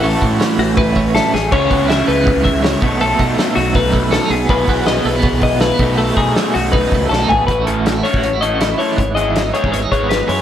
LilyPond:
<<
  \new Staff \with { instrumentName = "Clean electric guitar" } { \time 4/4 \key a \lydian \tempo 4 = 161 a'8 r4 fis'8 b'4 a'8 gis'8 | cis''4 e''8 b'4 e''8 cis''4 | a'8 r4 fis'8 b'4 a'8 gis'8 | b'4 dis''8 b'4 dis''8 b'4 |
a'8 gis'4 fis'8 b'4 a'8 gis'8 | b'8 a'4 cis''4 dis''4 cis''8~ | cis''8 dis''4 cis''8 e''8 cis''8 b'8 cis''8 | }
  \new Staff \with { instrumentName = "Overdriven electric guitar" } { \time 4/4 \key a \lydian <a, e a cis' e' a'>2.~ <a, e a cis' e' a'>8 r8 | <cis gis cis' e' gis'>2.~ <cis gis cis' e' gis'>8 <b, fis a dis' a'>8~ | <b, fis a dis' a'>2.~ <b, fis a dis' a'>8 r8 | <b, e b e' gis'>2.~ <b, e b e' gis'>8 <b, fis a dis'>8~ |
<b, fis a dis'>2.~ <b, fis a dis'>8 r8 | r8 <a cis' e' a'>8 r8 <a cis' e' a'>8 r8 <a cis' e' a'>8 r8 <a cis' e' a'>8 | r8 <gis b e' gis'>8 r8 <gis b e' gis'>8 r8 <gis b e' gis'>8 r8 <gis b e' gis'>8 | }
  \new Staff \with { instrumentName = "Clean electric guitar" } { \time 4/4 \key a \lydian << { <e cis' e' fis'>8 e'8 cis'4 e'8 cis'8 e'8 r8 | r8 b8 e'8 a16 b4.~ b16 r8 | a8 dis'8 a4 dis'8 a8 cis'16 dis'16 r8 | r8 b4 a16 b4~ b16 a16 b16 r8 |
a8 dis'8 a4 dis'8 a8 cis'16 dis'16 r8 | <e cis' e' fis'>4 cis'16 e'16 fis'8 cis'16 e'16 cis'8 e'4 | r4 dis'8 gis'8 cis'16 dis'16 b8 dis'4 | } \\ { a,4. a,2 a,8 | cis2 gis,8 dis8 cis8 b,8~ | b,4. fis,2 b,8 | b,2 b,4. b,8~ |
b,4. fis,2 b,8 | a,8 e2. e8 | gis,8 e2. e8 | } >> }
  \new Staff \with { instrumentName = "Fingered electric bass" } { \clef bass \time 4/4 \key a \lydian a,,8 a,8 r8 a,,2 a,,8 | cis,8 cis,4 cis,8. cis,4~ cis,16 b,,8~ | b,,8 b,8 r8 b,,2 b,,8 | b,,8 b,,4 b,,8. b,,4~ b,,16 b,,8~ |
b,,8 b,8 r8 b,,4 cis,8 b,,8 a,,8 | a,,4.~ a,,16 a,,2 r16 | gis,,4.~ gis,,16 gis,,8. gis,,4 fis,8 | }
  \new DrumStaff \with { instrumentName = "Drums" } \drummode { \time 4/4 hho8 <hho bd>8 <hho sn>8 hho8 <hho bd>8 <hho bd>8 <hho sn>16 sn16 sn8 | <cymc bd>8 <hho bd>8 <hho sn>8 hho8 <hho bd>8 <hho bd>8 <hho sn>8 <hho bd>8 | hho8 <hho bd>8 <hho sn>8 hho8 <hho bd>8 <hho bd>8 <hho sn>16 sn16 hho8 | <hho bd>8 <hho bd>8 <hho sn>8 hho8 <hho bd>8 <hho bd>8 <hho sn>8 <hho bd>8 |
hho8 <hho bd>8 <hho sn>8 hho8 <hho bd>8 <hho bd>8 sn8 tomfh8 | <hh bd>8 hh8 <hh sn>8 hho16 bd16 hh8 hh8 <hh sn>8 hho8 | <hh bd>8 hh8 <hh sn>8 hh16 bd16 hh8 <hh bd>8 <hh sn>8 hho8 | }
>>